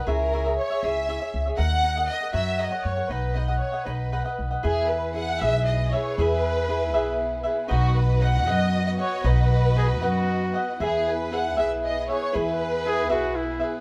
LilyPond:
<<
  \new Staff \with { instrumentName = "Violin section" } { \time 6/8 \key b \major \tempo 4. = 78 ais'4 cis''8 e''4 r8 | fis''4 dis''8 e''8 dis''8 cis''8 | b'8 dis''8 cis''8 b'4 r8 | \key e \major gis'8 b'8 fis''8 e''8 dis''8 cis''8 |
b'2~ b'8 r8 | fis'8 b'8 fis''8 dis''8. dis''16 cis''8 | b'2~ b'8 r8 | gis'8 b'8 fis''8 e''8 dis''8 cis''8 |
b'2~ b'8 r8 | }
  \new Staff \with { instrumentName = "Cavaquinho" } { \time 6/8 \key b \major <e' gis' cis'' e''>8 <e' gis' cis'' e''>16 <gis' cis'' e''>8 <gis' cis'' e''>16 <e' gis' cis'' e''>8 <e' gis' cis'' e''>16 <gis' cis'' e''>8 <gis' cis'' e''>16 | <dis' ais' dis'' fis''>8 <dis' ais' dis'' fis''>16 <ais' dis'' fis''>8 <ais' dis'' fis''>16 <fis' ais' cis'' fis''>8 <fis' ais' cis'' fis''>16 <ais' cis'' fis''>8 <ais' cis'' fis''>16 | <dis' b' dis'' fis''>8 <dis' b' dis'' fis''>16 <b' dis'' fis''>8 <b' dis'' fis''>16 <dis' b' dis'' fis''>8 <dis' b' dis'' fis''>16 <b' dis'' fis''>8 <b' dis'' fis''>16 | \key e \major <e' gis' b' e''>4 <e' gis' b' e''>8 <e' gis' b' e''>4 <gis' b' e''>8 |
<e' gis' b' e''>4 <e' gis' b' e''>8 <e' gis' b' e''>4 <gis' b' e''>8 | <dis' b' dis'' fis''>4 <dis' b' dis'' fis''>8 <dis' b' dis'' fis''>4 <b' dis'' fis''>8 | <dis' b' dis'' fis''>4 <dis' b' dis'' fis''>8 <dis' b' dis'' fis''>4 <b' dis'' fis''>8 | <e' gis' b' e''>4 <e' gis' b' e''>8 <e' gis' b' e''>4 <gis' b' e''>8 |
<e' gis' b' e''>4 <e' gis' b' e''>8 <e' gis' b' e''>4 <gis' b' e''>8 | }
  \new Staff \with { instrumentName = "Trumpet" } { \time 6/8 \key b \major r2. | r2. | r2. | \key e \major r2. |
r2. | r2. | r4 gis'8 fis'4~ fis'16 r16 | r2. |
r4 gis'8 fis'8 e'8. r16 | }
  \new Staff \with { instrumentName = "Violin section" } { \time 6/8 \key b \major << { r2. | r2. | r2. | \key e \major <e' gis'>2.~ |
<e' gis'>2. | <fis' dis''>2.~ | <fis' dis''>2. | <e' gis'>2.~ |
<e' gis'>2. | } \\ { r2. | r2. | r2. | b2.~ |
b2.~ | b2.~ | b2.~ | b2.~ |
b2. | } >> }
  \new Staff \with { instrumentName = "Upright bass" } { \clef bass \time 6/8 \key b \major cis,4. cis,4 cis,8 | dis,4. fis,4 fis,8 | b,,4. b,,4 b,,8 | \key e \major e,4. b,,4. |
e,4. b,,4. | b,,4. fis,4. | b,,4. fis,4. | e,4. b,,4. |
e,4. b,,4. | }
>>